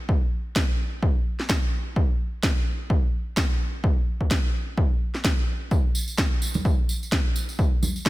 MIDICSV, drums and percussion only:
0, 0, Header, 1, 2, 480
1, 0, Start_track
1, 0, Tempo, 468750
1, 90, Time_signature, 4, 2, 24, 8
1, 8287, End_track
2, 0, Start_track
2, 0, Title_t, "Drums"
2, 90, Note_on_c, 9, 36, 106
2, 192, Note_off_c, 9, 36, 0
2, 570, Note_on_c, 9, 36, 111
2, 572, Note_on_c, 9, 38, 106
2, 672, Note_off_c, 9, 36, 0
2, 675, Note_off_c, 9, 38, 0
2, 1050, Note_on_c, 9, 36, 107
2, 1152, Note_off_c, 9, 36, 0
2, 1430, Note_on_c, 9, 38, 34
2, 1530, Note_on_c, 9, 36, 107
2, 1532, Note_off_c, 9, 38, 0
2, 1532, Note_on_c, 9, 38, 111
2, 1632, Note_off_c, 9, 36, 0
2, 1635, Note_off_c, 9, 38, 0
2, 2010, Note_on_c, 9, 36, 112
2, 2112, Note_off_c, 9, 36, 0
2, 2490, Note_on_c, 9, 36, 111
2, 2492, Note_on_c, 9, 38, 105
2, 2592, Note_off_c, 9, 36, 0
2, 2595, Note_off_c, 9, 38, 0
2, 2970, Note_on_c, 9, 36, 110
2, 3072, Note_off_c, 9, 36, 0
2, 3450, Note_on_c, 9, 36, 115
2, 3452, Note_on_c, 9, 38, 110
2, 3552, Note_off_c, 9, 36, 0
2, 3554, Note_off_c, 9, 38, 0
2, 3930, Note_on_c, 9, 36, 112
2, 4032, Note_off_c, 9, 36, 0
2, 4307, Note_on_c, 9, 36, 56
2, 4409, Note_off_c, 9, 36, 0
2, 4410, Note_on_c, 9, 36, 113
2, 4412, Note_on_c, 9, 38, 104
2, 4512, Note_off_c, 9, 36, 0
2, 4514, Note_off_c, 9, 38, 0
2, 4890, Note_on_c, 9, 36, 108
2, 4992, Note_off_c, 9, 36, 0
2, 5269, Note_on_c, 9, 38, 32
2, 5370, Note_on_c, 9, 36, 109
2, 5372, Note_off_c, 9, 38, 0
2, 5372, Note_on_c, 9, 38, 107
2, 5472, Note_off_c, 9, 36, 0
2, 5475, Note_off_c, 9, 38, 0
2, 5847, Note_on_c, 9, 54, 37
2, 5850, Note_on_c, 9, 36, 106
2, 5949, Note_off_c, 9, 54, 0
2, 5952, Note_off_c, 9, 36, 0
2, 6091, Note_on_c, 9, 54, 84
2, 6193, Note_off_c, 9, 54, 0
2, 6222, Note_on_c, 9, 54, 51
2, 6325, Note_off_c, 9, 54, 0
2, 6330, Note_on_c, 9, 36, 105
2, 6332, Note_on_c, 9, 38, 101
2, 6432, Note_off_c, 9, 36, 0
2, 6435, Note_off_c, 9, 38, 0
2, 6572, Note_on_c, 9, 54, 81
2, 6675, Note_off_c, 9, 54, 0
2, 6699, Note_on_c, 9, 54, 47
2, 6708, Note_on_c, 9, 63, 77
2, 6801, Note_off_c, 9, 54, 0
2, 6810, Note_off_c, 9, 63, 0
2, 6810, Note_on_c, 9, 36, 105
2, 6812, Note_on_c, 9, 54, 36
2, 6912, Note_off_c, 9, 36, 0
2, 6915, Note_off_c, 9, 54, 0
2, 7055, Note_on_c, 9, 54, 86
2, 7158, Note_off_c, 9, 54, 0
2, 7196, Note_on_c, 9, 54, 51
2, 7290, Note_on_c, 9, 36, 110
2, 7292, Note_on_c, 9, 38, 102
2, 7299, Note_off_c, 9, 54, 0
2, 7392, Note_off_c, 9, 36, 0
2, 7395, Note_off_c, 9, 38, 0
2, 7533, Note_on_c, 9, 54, 87
2, 7635, Note_off_c, 9, 54, 0
2, 7666, Note_on_c, 9, 54, 47
2, 7767, Note_off_c, 9, 54, 0
2, 7767, Note_on_c, 9, 54, 36
2, 7770, Note_on_c, 9, 36, 102
2, 7870, Note_off_c, 9, 54, 0
2, 7873, Note_off_c, 9, 36, 0
2, 8014, Note_on_c, 9, 54, 77
2, 8014, Note_on_c, 9, 63, 77
2, 8116, Note_off_c, 9, 54, 0
2, 8117, Note_off_c, 9, 63, 0
2, 8149, Note_on_c, 9, 54, 48
2, 8250, Note_on_c, 9, 36, 104
2, 8251, Note_off_c, 9, 54, 0
2, 8252, Note_on_c, 9, 38, 98
2, 8287, Note_off_c, 9, 36, 0
2, 8287, Note_off_c, 9, 38, 0
2, 8287, End_track
0, 0, End_of_file